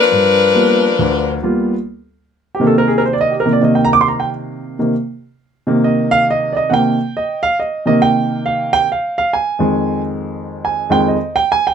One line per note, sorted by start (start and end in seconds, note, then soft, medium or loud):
0.00 1.40 F3 medium
0.00 1.40 D4 medium
0.00 1.40 A#4 medium
0.00 1.40 B4 loud
0.12 0.49 G2 medium
0.55 0.85 G3 soft
0.55 0.85 A#3 soft
0.55 0.85 B3 soft
0.55 0.86 F4 medium
0.99 1.37 D2 medium
1.43 1.73 G3 soft
1.43 1.73 A#3 soft
1.43 1.73 B3 soft
1.43 1.73 F4 medium
2.55 2.64 G4 medium
2.60 3.44 C3 medium
2.60 3.44 D#3 soft
2.60 3.45 A#3 medium
2.67 2.74 A4 medium
2.78 2.90 A#4 medium
2.88 3.02 G#4 medium
2.98 3.01 A#4 medium
3.06 3.14 C5 medium
3.13 3.18 D5 medium
3.21 3.33 D#5 medium
3.31 3.46 G4 soft
3.40 3.51 A#4 medium
3.46 3.60 C3 soft
3.46 3.60 D#3 soft
3.46 3.60 A#3 soft
3.53 3.61 D5 medium
3.61 4.78 C3 soft
3.61 4.78 D#3 soft
3.61 4.78 A#3 medium
3.61 3.77 D#5 medium
3.75 3.90 G5 medium
3.85 3.88 A#5 medium
3.93 4.01 D6 medium
4.01 4.06 C6 medium
4.08 4.21 A#5 medium
4.20 4.29 G5 medium
4.79 4.92 C3 soft
4.79 4.92 D#3 soft
4.79 4.93 A#3 soft
5.67 6.69 C3 medium
5.67 6.70 D#3 soft
5.67 6.70 A#3 medium
5.84 6.11 D#5 medium
6.11 6.25 F5 loud
6.31 6.55 D#5 medium
6.52 6.54 D5 soft
6.57 6.70 D#5 medium
6.70 6.96 C3 soft
6.70 6.96 D#3 soft
6.70 6.97 A#3 soft
6.70 6.72 F#5 medium
6.70 7.40 G5 medium
7.17 7.43 D#5 medium
7.43 7.57 F5 medium
7.60 7.86 D#5 medium
7.86 8.84 C3 soft
7.86 8.84 D#3 soft
7.86 8.84 A#3 medium
7.86 8.01 D#5 medium
8.02 8.70 G5 medium
8.46 8.73 F5 medium
8.73 8.87 G5 loud
8.92 9.16 F5 medium
9.18 9.32 F5 medium
9.33 10.01 G#5 medium
9.59 10.88 F2 soft
9.59 10.89 D#3 soft
9.59 10.89 G#3 medium
10.65 10.91 G#5 medium
10.90 11.15 F2 medium
10.90 11.15 D#3 soft
10.90 11.16 G#3 medium
10.90 11.06 G5 medium
11.08 11.35 D#5 medium
11.36 11.49 G5 medium
11.52 11.65 G#5 medium
11.67 11.74 G5 medium